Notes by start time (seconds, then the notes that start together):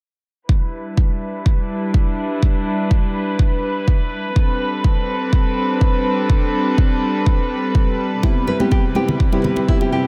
0.49 G3 D4 E4 B4, kick
0.97 kick
1.46 kick
1.94 kick
2.43 kick
2.91 kick
3.39 kick
3.88 kick
4.36 G3 C4 D4 A4, kick
4.84 kick
5.33 kick
5.81 kick
6.30 kick
6.78 kick
7.26 kick
7.75 kick
8.23 C3 G3 B3 C4 E4 G4, kick, muted conga
8.47 B4, muted conga
8.60 G3 B3 C4 E4 G4, high conga
8.71 G4, kick, muted conga
8.95 G3 B3 C4 E4 G4, high conga
9.09 muted conga, low conga
9.20 kick
9.33 G3 B3 C4 E4 G4, muted conga
9.44 B4, low conga
9.56 muted conga, high conga
9.68 G3 B3 C4 E4 G4, kick
9.81 G4, muted conga
9.92 G4